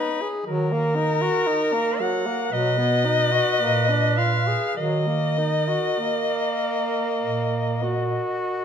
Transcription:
Already playing: D#4 B4
0.21 G#4
0.45 D#3 F#3 A#4
0.72 A#3
0.96 D#4
1.21 F#4
1.47 D#4
1.73 A#3
2.00 F#3 F#5
2.26 A#3
2.51 B2 F#3 B4 D#5
2.78 B3
3.05 D#4
3.32 F#4
3.59 A#2 A#3
3.89 D4
4.17 F4 F5
4.47 G#4
4.76 D#3 F#3 A#4 D#5
5.07 A#3
5.38 D#4
5.68 F#4
5.99 A#3
7.20 A#2
7.83 F#4

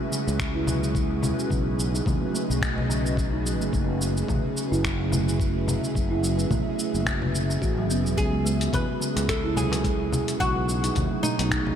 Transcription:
Already playing: C#4 F#4 G#4 B4 E5
0.11 C#3, cabasa
0.27 C#2, cabasa
0.39 finger snap, kick, cabasa
0.55 E4
0.67 F#3, low conga, cabasa
0.82 G#3, cabasa
0.94 G#3, kick, cabasa
1.23 low conga, cabasa
1.39 cabasa
1.50 B1 C#3, kick, cabasa
1.80 cabasa
1.94 D#4, cabasa
2.06 D#2 F#3, kick, low conga, cabasa
2.22 A3
2.27 D#5
2.34 A3, cabasa
2.50 B1, cabasa
2.62 finger snap, kick, cabasa
2.78 low conga
2.89 C#3, cabasa
3.06 cabasa
3.17 kick, cabasa
3.33 D#4
3.45 F#3, cabasa
3.61 F#1 A3, cabasa
3.73 F#1 A3, kick, cabasa
4.02 cabasa
4.17 cabasa
4.28 A1 C#3, kick, low conga, cabasa
4.57 cabasa
4.72 F#1 E4, cabasa
4.84 F#3, finger snap, kick, cabasa
4.99 A3
5.08 A3 E5, low conga
5.13 cabasa
5.29 cabasa
5.40 kick, cabasa
5.67 C#3, low conga, cabasa
5.84 cabasa
5.95 F#1, kick, cabasa
6.11 E4
6.23 F#3, cabasa
6.39 A3, cabasa
6.51 A1 A3, kick, low conga, cabasa
6.79 cabasa
6.94 F#1, cabasa
7.06 C#3, finger snap, kick, cabasa
7.22 low conga
7.35 cabasa
7.50 C#3, cabasa
7.62 A1 F#4, kick, cabasa
7.77 F#3
7.90 F#1 B3, cabasa
8.05 E1 F#3, cabasa
8.17 C#2 F#3 G#4, kick, closed hi-hat, cabasa
8.33 G#3
8.45 G#3, cabasa
8.61 closed hi-hat, cabasa
8.73 E2 B4, kick, closed hi-hat, low conga, cabasa
9.00 C#3, cabasa
9.16 C#2, closed hi-hat, darbuka tek, cabasa
9.29 A4, finger snap, kick, closed hi-hat, cabasa
9.44 E4
9.56 F#3 G#4, low conga, cabasa
9.72 G#3, closed hi-hat, darbuka ka, darbuka tek, cabasa
9.84 G#3, kick, closed hi-hat, cabasa
10.13 low conga, cabasa
10.28 closed hi-hat, darbuka ka, cabasa
10.40 B1 C#3 F#4, kick, closed hi-hat, cabasa
10.69 cabasa
10.83 D#4, closed hi-hat, cabasa
10.95 D#2 F#3, kick, closed hi-hat, low conga, cabasa
11.11 A3
11.23 A3 D#4, darbuka dum, cabasa
11.38 B1 D#5, closed hi-hat, darbuka ka, darbuka tek, cabasa
11.51 finger snap, kick, closed hi-hat, cabasa
11.67 low conga

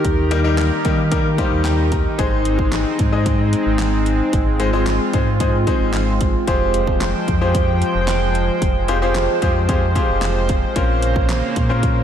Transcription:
Already playing: D#3 D#4 G4 A#4
0.05 D#2, kick, closed hi-hat
0.31 G3 A#3 D#4 G4 A#4, closed hi-hat
0.44 G3 A#3 D#4 G4 A#4
0.58 snare, clap, closed hi-hat
0.85 D#3 G3 A#3 D#4 G4 A#4, kick, closed hi-hat
1.11 G3 A#3 D#4 G4 A#4, kick, closed hi-hat
1.38 G3 A#3 D#4 G4 C5 F5, kick, closed hi-hat
1.52 D#2
1.64 G5, snare, clap, closed hi-hat
1.92 A#5, kick, closed hi-hat
2.18 G#1 G#3 C4 D#4 G#4 C5, kick, closed hi-hat
2.45 closed hi-hat
2.59 kick
2.72 snare, clap, closed hi-hat
2.99 G#2, kick, closed hi-hat
3.12 G#3 C4 D#4 G#4 D#5
3.26 kick, closed hi-hat
3.53 closed hi-hat
3.66 G#1
3.78 snare, clap, closed hi-hat
4.06 closed hi-hat
4.33 G#1 F4, kick, closed hi-hat
4.60 G#3 C4 D#4 G#4 C5, closed hi-hat
4.73 G#3 C4 D#4 G#4 C5
4.86 snare, clap, closed hi-hat
5.13 G#2 G#3 C4 D#4 G#4 C5, kick, closed hi-hat
5.40 G#3 C4 D#4 G#4 C5, kick, closed hi-hat
5.67 G#3 C4 D#4 G#4 C5, kick, closed hi-hat
5.80 G#1
5.93 snare, clap, closed hi-hat
6.21 kick, closed hi-hat
6.47 F1 F3 G#3 C4 F4 G4 G#4 C5 G5, kick, closed hi-hat
6.74 closed hi-hat
6.87 kick
7.01 snare, clap, closed hi-hat
7.28 F2, kick, closed hi-hat
7.41 C4 F4 G4 G#4 C5
7.55 kick, closed hi-hat
7.82 closed hi-hat
7.95 F1
8.07 snare, clap, closed hi-hat
8.35 closed hi-hat
8.62 F1, kick, closed hi-hat
8.88 C4 F4 G4 G#4 C5, closed hi-hat
9.02 C4 F4 G4 G#4 C5
9.15 snare, clap, closed hi-hat
9.42 F2 C4 F4 G4 G#4 C5, kick, closed hi-hat
9.68 C4 F4 G4 G#4 C5, kick, closed hi-hat
9.95 C4 F4 G4 G#4 C5, kick, closed hi-hat
10.09 F1
10.21 snare, clap, closed hi-hat
10.49 kick, closed hi-hat
10.76 A#1 C#3 A#3 C4 C#4 F4 A#4 C5, kick, closed hi-hat
11.02 closed hi-hat
11.16 kick
11.29 snare, clap, closed hi-hat
11.56 A#2, kick, closed hi-hat
11.69 C4 C#4 F4 A#4 C5
11.83 kick, closed hi-hat

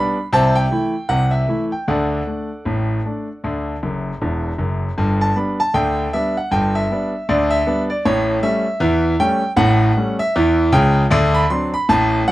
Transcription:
Already playing: G3 B3 D4 B5
0.33 C2 C3 C5 E5 A5
0.55 G5
0.71 E3 A3 E4
1.09 C2 C3 F#5
1.31 E5
1.48 E3 A3 E4
1.72 G5
1.88 D2 D3 A4 D5 F#5
2.27 A3 D4
2.65 A1 A2
3.06 A3 D4
3.44 D2 D3
3.83 F#1 F#2
4.22 E1 E2
4.58 F#1 F#2
4.98 G1 G2
5.21 A5
5.36 G3 B3 D4 B5
5.60 A5
5.74 D2 D3 G5
6.13 G3 B3 D4 E5
6.37 F#5
6.51 G1 G2 G5
6.75 E5
6.90 G3 B3 D4
7.29 D2 D3 D5
7.50 E5
7.67 G3 B3 D4
7.90 D5
8.05 A1 A2 C#5
8.43 G3 A3 C#4 E5
8.80 E2 E3
9.20 G3 A3 C#4 G5
9.56 A1 A2 F#5
9.97 G3 A3 C#4
10.19 E5
10.36 E2 E3
10.72 C#2 C#3 G5
11.11 D2 D3
11.34 B5
11.50 F#3 C4 D4 C6
11.74 B5
11.89 A1 A2 A5
12.28 F#3 C4 D4 F#5

